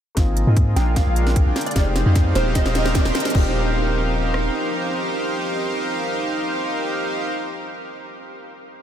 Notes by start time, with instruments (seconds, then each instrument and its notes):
0.15 808-style bass G#1, analog synth pad C3 G#3 A#3 F4, grand piano A#3 C4 D#4, supersaw synth C4 F4 G#4 A#4 D#5, kick, snare, closed hi-hat, riser
0.19 grand piano F4
0.37 closed hi-hat
0.47 808-style bass G#2, supersaw synth C4 F4 G#4 A#4 D#5
0.57 kick, closed hi-hat
0.76 808-style bass A#1, supersaw synth D4 F4 G#4 A#4 F5, digital synth lead G5, snare, closed hi-hat
0.94 analog synth pad D3, grand piano G#3 C4 D4, digital synth lead F5, kick, snare, closed hi-hat
0.98 grand piano F4
1.07 808-style bass A#1, supersaw synth D4 F4 G#4 A#4 F5, digital synth lead F5
1.16 closed hi-hat
1.27 snare
1.36 kick, closed hi-hat
1.46 808-style bass A#1, supersaw synth D4 F4 G#4 A#4 G5
1.56 snare, closed hi-hat
1.61 closed hi-hat
1.66 digital synth lead D5, closed hi-hat
1.71 grand piano G#3, closed hi-hat
1.75 808-style bass F1, analog synth pad F3 D#4 G4, grand piano C4 D#4 G4, supersaw synth D#4 G4 G#4 C5 F5, digital synth lead D5, kick, snare, closed hi-hat
1.96 snare, closed hi-hat
2.06 808-style bass F2, supersaw synth D#4 G4 G#4 C5 F5
2.15 kick, snare, closed hi-hat
2.33 808-style bass D#1, grand piano A#3 C4 F4, analog synth pad C4 D#4, supersaw synth D#4 G4 A#4 C5 F5, digital synth lead C5, snare, closed hi-hat
2.37 grand piano G4
2.55 digital synth lead D#5, kick, snare, closed hi-hat
2.66 808-style bass D#1, supersaw synth D#4 G4 A#4 C5 F5, snare
2.75 snare, closed hi-hat
2.86 snare
2.95 kick, snare, closed hi-hat
3.05 808-style bass D#1, supersaw synth D#4 G4 A#4 C5 G5, snare
3.15 snare, closed hi-hat
3.20 closed hi-hat
3.25 snare, closed hi-hat
3.30 grand piano A#3 C4, closed hi-hat
3.35 808-style bass D#1, analog synth pad F3 C4 D#4 G4, supersaw synth D#4 G4 A#4 C5 F5, grand piano F4 G4, kick, crash
4.34 cross-stick